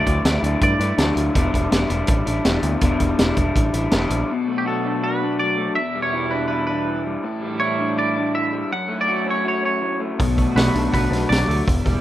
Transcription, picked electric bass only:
0.07 D2
0.25 D2
0.43 D2
0.61 G2
0.80 G2
0.98 D2
1.16 D2
1.36 E1
1.55 E1
1.71 E1
1.90 E1
2.08 A1
2.27 A1
2.45 E1
2.63 D2
2.82 E1
3.00 E1
3.20 E1
3.37 E1
3.56 A1
3.74 A1
3.92 E1
4.10 A#1
10.20 B1
10.55 B1
10.75 B1
10.94 B1
11.11 B1
11.30 B1
11.48 D2
11.68 E1
11.86 E1

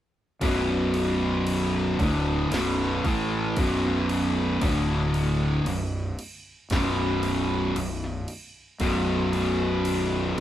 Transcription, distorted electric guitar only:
0.41 B1 F#2 B2
1.99 D2 A2 D3
2.52 B1 F#2 B2
3.05 A2 E3 A3
3.57 B1 F#2 B2
4.61 D2 A2 D3
5.67 B1 F#2
6.71 B1 F#2 B2
7.76 B1 F#2
8.80 B1 F#2 B2

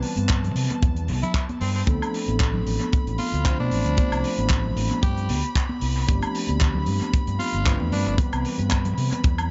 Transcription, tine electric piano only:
Already playing: E3 G3 B3 C4 B4
1.86 F3 A3 C4 D4 A4
3.45 F3 A3 C4 D4 C5
3.96 F3 A3 C4 D4 C5
6.07 F3 A3 C4 D4 G4
7.65 F3 A3 C4 D4 B4
8.17 E3 G3 B3 C4 B4

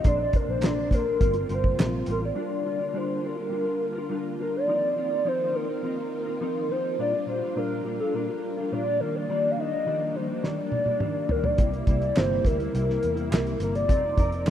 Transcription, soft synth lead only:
0.07 D5
0.21 D5
0.36 A#4
0.50 C5
0.65 D5
0.94 A#4
1.54 C5
2.12 A#4
2.25 D5
2.97 C5
3.26 A#4
4.42 A#4
4.56 D5
5.28 C5
5.55 A#4
6.72 C5
7.00 D5
7.29 C5
7.58 A#4
8.00 A4
8.15 A#4
8.73 D5
9.00 A#4
9.16 D5
9.51 F5
9.60 D#5
10.16 C5
10.45 D5
11.31 A#4
11.45 D5
12.17 C5
12.46 A#4
13.63 A#4
13.76 D5

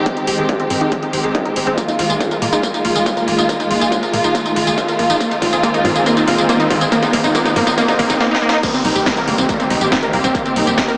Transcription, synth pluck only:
0.06 C4
0.17 D#4
0.28 G4
0.38 G#4
0.49 G4
0.60 C4
0.70 C4
0.81 D#4
0.92 C4
1.03 D#4
1.13 C4
1.24 G#4
1.35 D#4
1.45 D#4
1.56 C4
1.67 C4
1.77 A#3
1.88 D#4
1.99 F4
2.10 G#4
2.20 F4
2.31 A#4
2.42 A#3
2.53 D#4
2.63 A#3
2.74 D#4
2.85 F4
2.95 G#4
3.06 F4
3.17 A#4
3.28 A#3
3.38 D#4
3.49 A#3
3.60 D#4
3.70 F4
3.81 G#4
3.92 F4
4.03 A#4
4.13 A#3
4.24 D#4
4.35 A#3
4.46 D#4
4.56 F4
4.67 G#4
4.78 F4
4.88 A#4
4.99 A#3
5.10 D#4
5.21 A#3
5.31 D#4
5.42 F4
5.53 G#4
5.63 A#3
5.74 D#4
5.85 F4
5.96 G#4
6.06 A#3
6.17 D#4
6.28 F4
6.38 G#4
6.49 A#3
6.60 D#4
6.70 F4
6.81 G#4
6.92 A#3
7.03 D#4
7.13 A#3
7.24 D#4
7.35 A#3
7.45 D#4
7.56 A#3
7.67 D#4
7.77 A#3
7.88 D#4
7.99 A#3
8.10 D#4
8.20 A#3
8.31 D#4
8.42 A#3
8.53 D#4
8.63 A#3
8.74 C4
8.85 D#4
8.96 G4
9.06 D#4
9.17 A#4
9.28 A#3
9.38 C4
9.49 A#3
9.60 C4
9.70 D#4
9.81 G4
9.92 D#4
10.03 A#4
10.13 A#3
10.24 C4
10.35 A#3
10.45 C4
10.56 D#4
10.67 G4
10.77 D#4
10.88 A#4

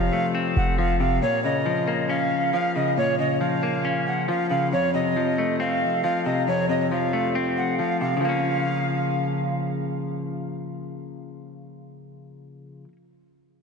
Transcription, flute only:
Already playing: F5
0.57 F#5
0.78 F5
1.01 F5
1.22 C#5
1.44 D#5
2.10 F5
2.53 F5
2.76 D#5
2.97 C#5
3.19 D#5
3.41 F5
4.07 F#5
4.29 F5
4.50 F5
4.72 C#5
4.94 D#5
5.60 F5
6.04 F5
6.25 D#5
6.48 C#5
6.70 D#5
6.92 F5
7.57 F#5
7.79 F5
8.01 F5
8.23 F5

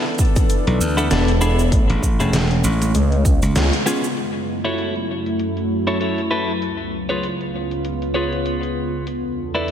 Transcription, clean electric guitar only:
0.97 B3 D4 E4 A4
1.10 B3 D4 E4 A4
1.41 B3 D4 E4 G#4
2.20 A3 C#4 E4 G#4
3.86 B3 C#4 F4 G#4
4.64 E4 F#4 A4 C#5
5.87 E4 F#4 A4 C#5
6.00 E4 F#4 A4 C#5
6.31 E4 F#4 A4 B4
7.09 F4 G#4 B4 C#5
8.14 F4 G#4 B4 C#5
9.55 E4 A4 B4 D5

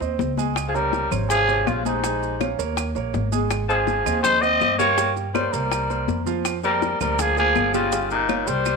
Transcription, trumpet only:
0.68 G#4
0.75 A#4
1.29 G#4
1.67 F4
1.85 D#4
3.69 G#4
4.23 C5
4.41 D#5
4.78 C#5
5.34 C5
5.52 A#4
6.65 A#4
7.01 A#4
7.20 G#4
7.38 G#4
7.75 F4
8.11 D#4
8.48 C5

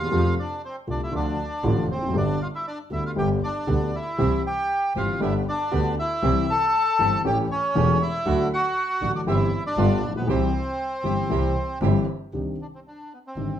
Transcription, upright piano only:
0.05 E2
0.11 F2 C3 F3 G3 A3 F4
0.87 C2 C3 G3 A3 F4
1.12 D2 D3 F3 A3 F4
1.64 A1 A2 D3 F3 A3 F4
1.96 E2
2.02 F2
2.08 F#2
2.14 G1 G2 D3 G3 B3 G4
2.90 D2 D3 G3 B3 G4
3.16 G1 G2 D3 G3 B3 G4
3.67 D2 D3 G3 B3 G4
4.18 C2 C3 E3 G3 C4 G4
4.96 G1 G2 E3 G3 C4 G4
5.20 G1 G2 D3 G3 B3 G4
5.72 D2 D3 G3 B3 G4
6.22 C2 C3 E3 G3 C4 G4
6.99 G1 G2 E3 G3 C4 G4
7.25 A1 A2 E3 A3 C#4 G4
7.75 E1 E2 E3 A3 C#4 G4
8.26 D2 D3 F#3 A3 F#4
9.01 A1 A2 D3 F#3 A3 F#4
9.27 G1 G2 E3 G3 C4 G4
9.77 G1 G2 D3 G3 B3 F4
10.09 A1
10.15 A#1
10.21 B1
10.27 C2 C3 E3 G3 C4 G4
11.04 G1 G2 E3 G3 C4 G4
11.30 C2 C3 E3 G3 C4 G4
11.82 G1 G2 E3 G3 C4 G4
12.33 C2 C3 D#3 C4 D4 G4
13.37 G1 G2 D#3 C4 D4 G4

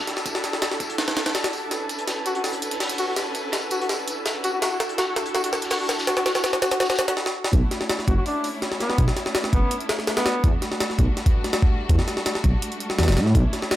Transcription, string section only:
Already playing: D4 E4 F#4 G4 A4
1.71 C#4 B4
4.62 D4 E4 F#4 G4 A4
7.53 A3 C#4 D4 E4
10.44 G3 F#4
13.35 C#4 E4

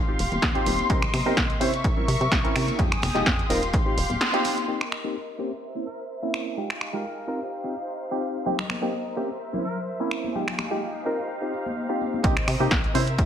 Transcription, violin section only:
Already playing: G4 F5 C6
0.90 A#4 D#5
1.61 A#4 E5 C#6
2.79 G#4 G5 D#6
3.50 G4 F5 C6
4.68 A#4 D#5 C6
5.39 A#4 C5 E5
6.57 D#4 G4 G#4 F5
7.28 D#4 C5
8.46 C4 A#4 D#5
9.17 C5 E5
10.35 D#4 G4 G#4 F5
11.06 C5
12.24 C4 A#4 D#5
12.96 E5

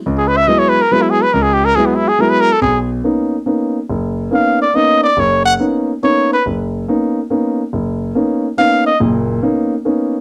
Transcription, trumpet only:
0.18 G#4
0.28 B4
0.37 E5
0.48 D#5
0.59 C#5
0.69 B4
0.82 A#4
0.92 B4
1.02 E4
1.10 G#4
1.23 B4
1.34 A#4
1.43 G#4
1.54 G4
1.65 A#4
1.76 G#4
1.86 B3
1.96 E4
2.08 G#4
2.21 A#4
2.30 B4
2.41 A#4
2.53 A4
2.62 G#4
4.34 F5
4.62 D5
4.76 D#5
5.04 D5
5.20 C#5
5.46 F#5
6.04 C#5
6.33 B4
8.59 F5
8.86 D#5

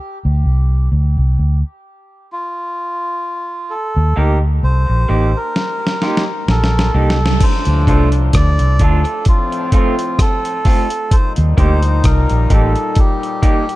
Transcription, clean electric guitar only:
4.16 A#3 D#4 G4
5.09 A#3 D#4 G4
6.02 A#3 D#4 G4
6.94 A#3 D#4 G4
7.88 A3 D4 F4
8.81 A3 D4 F4
9.73 A3 C4 F4
10.65 A3 C4 F4
11.57 A#3 D#4 G4
12.50 A#3 D#4 G4
13.42 A#3 D#4 G4

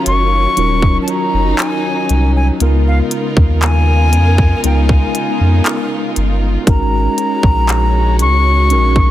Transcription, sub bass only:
0.06 F#1
0.57 D#1
1.34 F#1
2.10 C2
2.60 C#2
3.37 D#2
4.13 F2
4.64 C#2
5.40 F2
6.17 G1
6.67 G#1
7.43 A#1
8.20 C#2
8.71 A#1

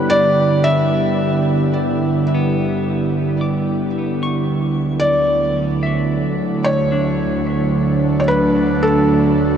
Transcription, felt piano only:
Already playing: B4
0.10 D5
0.64 E5
5.00 D5
6.64 C#5
8.20 C#5
8.28 B4
8.83 A4

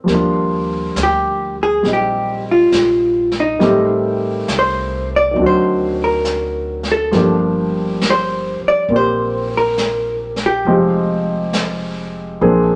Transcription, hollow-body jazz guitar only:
1.03 G4
1.63 G#4
1.93 G4
2.51 F4
3.40 D#4
4.59 C5
5.16 D5
5.46 C5
6.04 A#4
6.92 A4
8.10 C5
8.68 D5
8.96 C5
9.57 A#4
10.46 G4

